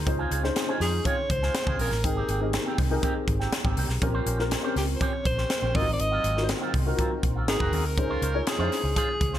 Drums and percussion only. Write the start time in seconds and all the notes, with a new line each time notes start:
0.07 kick, closed hi-hat
0.31 closed hi-hat
0.44 snare
0.56 snare, closed hi-hat
0.81 snare, open hi-hat
1.05 kick, closed hi-hat
1.30 kick, closed hi-hat
1.43 snare
1.55 snare, closed hi-hat
1.67 kick
1.79 open hi-hat
1.92 snare
2.04 kick, closed hi-hat
2.29 closed hi-hat
2.53 snare, closed hi-hat
2.78 kick, open hi-hat
3.03 kick, closed hi-hat
3.28 kick, closed hi-hat
3.41 snare
3.52 snare, closed hi-hat
3.65 kick
3.77 open hi-hat
3.89 snare
4.02 kick, closed hi-hat
4.27 closed hi-hat
4.39 snare
4.51 snare, closed hi-hat
4.76 snare, open hi-hat
5.01 kick, closed hi-hat
5.25 kick, closed hi-hat
5.38 snare
5.50 snare, closed hi-hat
5.75 kick, open hi-hat
6.00 closed hi-hat
6.24 closed hi-hat
6.37 snare
6.49 snare, closed hi-hat
6.74 kick, open hi-hat
6.99 kick, closed hi-hat
7.23 kick, closed hi-hat
7.48 snare, closed hi-hat
7.60 kick
7.73 open hi-hat
7.98 kick, closed hi-hat
8.22 closed hi-hat
8.47 snare, closed hi-hat
8.72 snare, open hi-hat
8.96 kick, closed hi-hat
9.21 kick, closed hi-hat
9.34 snare